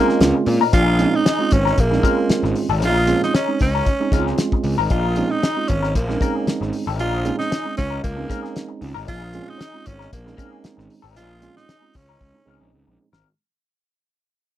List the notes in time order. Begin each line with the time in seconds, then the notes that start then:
Already playing: G#3 A#3 C4 C#4
0.02 F4
0.08 C#4 D#4 G#4, snare
0.20 C#2, muted clean electric guitar stroke, snare, closed hi-hat
0.34 muted clean electric guitar stroke
0.46 A#2, open hi-hat
0.61 C#4 D#4 A#4
0.73 A#1 C#4 D#4 F4 G#4, kick, closed hi-hat
0.99 G#3 C4 C#4 D#4, closed hi-hat
1.14 D#4, muted clean electric guitar stroke
1.25 C#4 D#4 G#4, snare, closed hi-hat
1.39 G#3 C4 C#4 F4
1.51 G#1 C#4, muted clean electric guitar stroke, kick, closed hi-hat
1.65 C#4 D#4 A#4, snare
1.77 A#1 A#3 C#4 F4, kick, closed hi-hat
1.91 G#3 C4 C#4 D#4, muted clean electric guitar stroke, snare
2.03 G#3 C4 C#4 D#4 F4 A#4, kick, closed hi-hat
2.17 muted clean electric guitar stroke
2.30 muted picked electric bass stroke, muted clean electric guitar stroke, snare, closed hi-hat
2.43 G#1, muted clean electric guitar stroke, snare
2.56 open hi-hat
2.69 G#1 C#4 D#4 A#4
2.82 A#1 C#4 D#4 F4 G#4, closed hi-hat
3.07 G#3 C4 C#4 F4, closed hi-hat
3.23 D#4, muted clean electric guitar stroke, snare
3.34 C#4 D#4 G#4, snare, closed hi-hat
3.48 G#3 C4 C#4 D#4
3.59 C#2 C#4, muted clean electric guitar stroke, kick, snare, open hi-hat
3.73 C#4 D#4 A#4
3.86 C#4 D#4, muted clean electric guitar stroke, kick, closed hi-hat
4.00 G#3 C4 C#4 D#4, muted clean electric guitar stroke
4.12 C#2 G#3 C4 C#4 D#4 A#4, kick, snare, closed hi-hat
4.19 F4
4.27 C#4 D#4 G#4, snare
4.38 snare, closed hi-hat
4.52 muted clean electric guitar stroke, kick
4.64 C#2, open hi-hat
4.78 G#1 C#4 D#4 A#4
4.90 A#1 C#4 D#4 F4 G#4, kick, closed hi-hat
5.16 G#3 C4 C#4 D#4, closed hi-hat
5.30 D#4, muted clean electric guitar stroke
5.43 C#4 D#4 G#4, snare, closed hi-hat
5.57 G#3 C4 C#4 F4
5.68 G#1 C#4, muted clean electric guitar stroke, kick, closed hi-hat
5.83 C#4 D#4 A#4, snare
5.95 A#1 A#3 C#4 F4, kick, closed hi-hat
6.09 G#3 C4 C#4 D#4, muted clean electric guitar stroke, snare
6.21 G#3 C4 C#4 D#4 A#4, kick, closed hi-hat
6.35 C#4 D#4 G#4
6.47 muted clean electric guitar stroke, muted picked electric bass stroke, snare, closed hi-hat
6.61 G#1, muted clean electric guitar stroke, snare
6.73 open hi-hat
6.87 G#1 C#4 D#4 A#4
6.99 A#1 C#4 D#4 F4 G#4, closed hi-hat
7.25 G#3 C4 C#4 D#4, closed hi-hat
7.38 D#4, muted clean electric guitar stroke, snare
7.51 C#4 D#4 G#4, snare, closed hi-hat
7.65 G#3 C4 C#4 D#4
7.77 C#2 C#4, muted clean electric guitar stroke, kick, snare, closed hi-hat
7.90 C#4 D#4 A#4
8.03 C#2 A#3 C#4 F4, muted clean electric guitar stroke, kick, closed hi-hat
8.16 G#3 C4 C#4 D#4, muted clean electric guitar stroke
8.29 G#3 C4 C#4 D#4 A#4, kick, snare, closed hi-hat
8.42 C#4 D#4 G#4, snare
8.55 muted clean electric guitar stroke, snare, closed hi-hat
8.69 muted clean electric guitar stroke
8.82 C#2, open hi-hat
8.94 G#1 C#4 D#4 A#4
9.06 A#1 C#4 D#4 F4 G#4, kick, closed hi-hat
9.34 G#3 C4 C#4 F4, closed hi-hat
9.47 D#4, muted clean electric guitar stroke
9.58 C#4 D#4 G#4, snare, closed hi-hat
9.74 G#3 C4 C#4 F4
9.85 G#1 C#4, muted clean electric guitar stroke, kick, closed hi-hat
9.99 C#4 D#4 A#4, snare
10.11 A#1 A#3 C#4 D#4, muted clean electric guitar stroke, kick, closed hi-hat
10.25 G#3 C4 C#4 D#4, muted clean electric guitar stroke, snare
10.37 G#3 C4 C#4 D4 D#4 A#4, kick, closed hi-hat
10.46 D#4
10.51 C#4 D#4 G#4
10.64 muted clean electric guitar stroke, muted picked electric bass stroke, snare, closed hi-hat
10.77 G#1, muted clean electric guitar stroke, snare
10.90 open hi-hat
11.02 G#1 C#4 D#4 A#4
11.15 A#1 C#4 D#4 F4 G#4, closed hi-hat
11.42 G#3 C4 C#4 F4, closed hi-hat
11.56 D#4, muted clean electric guitar stroke, snare
11.69 C#4 D#4 G#4, snare, closed hi-hat
11.81 G#3 C4 C#4 F4
11.94 C#2 C#4, muted clean electric guitar stroke, kick, snare, open hi-hat
12.09 C#4 D#4 A#4
12.20 C#2 C#4 D#4, kick
12.33 G#3 C4 C#4 D#4, muted clean electric guitar stroke
12.45 C#2 G#3 C4 C#4 D#4 A#4
12.61 A#1 C#4 D#4 G#4
12.73 C#2, muted clean electric guitar stroke
12.87 A#1, muted clean electric guitar stroke
13.13 G#1 C#4 D#4 A#4, snare